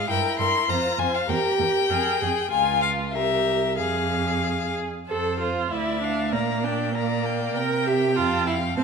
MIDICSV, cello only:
0, 0, Header, 1, 2, 480
1, 0, Start_track
1, 0, Key_signature, -4, "minor"
1, 0, Tempo, 607287
1, 71, Time_signature, 2, 2, 24, 8
1, 1992, Tempo, 643777
1, 3911, Key_signature, -1, "major"
1, 3912, Tempo, 614125
1, 6836, End_track
2, 0, Start_track
2, 0, Title_t, "Cello"
2, 0, Program_c, 0, 42
2, 72, Note_on_c, 0, 43, 57
2, 136, Note_off_c, 0, 43, 0
2, 308, Note_on_c, 0, 43, 52
2, 371, Note_off_c, 0, 43, 0
2, 547, Note_on_c, 0, 41, 53
2, 610, Note_off_c, 0, 41, 0
2, 776, Note_on_c, 0, 41, 52
2, 840, Note_off_c, 0, 41, 0
2, 1019, Note_on_c, 0, 40, 56
2, 1083, Note_off_c, 0, 40, 0
2, 1260, Note_on_c, 0, 40, 48
2, 1323, Note_off_c, 0, 40, 0
2, 1506, Note_on_c, 0, 41, 50
2, 1569, Note_off_c, 0, 41, 0
2, 1754, Note_on_c, 0, 41, 52
2, 1817, Note_off_c, 0, 41, 0
2, 1996, Note_on_c, 0, 37, 47
2, 2462, Note_on_c, 0, 36, 45
2, 2473, Note_off_c, 0, 37, 0
2, 2943, Note_on_c, 0, 41, 46
2, 2954, Note_off_c, 0, 36, 0
2, 3759, Note_off_c, 0, 41, 0
2, 3910, Note_on_c, 0, 41, 41
2, 4366, Note_off_c, 0, 41, 0
2, 4397, Note_on_c, 0, 38, 43
2, 4875, Note_on_c, 0, 46, 43
2, 4887, Note_off_c, 0, 38, 0
2, 5830, Note_off_c, 0, 46, 0
2, 5835, Note_on_c, 0, 48, 45
2, 6320, Note_on_c, 0, 41, 50
2, 6332, Note_off_c, 0, 48, 0
2, 6787, Note_off_c, 0, 41, 0
2, 6791, Note_on_c, 0, 45, 55
2, 6836, Note_off_c, 0, 45, 0
2, 6836, End_track
0, 0, End_of_file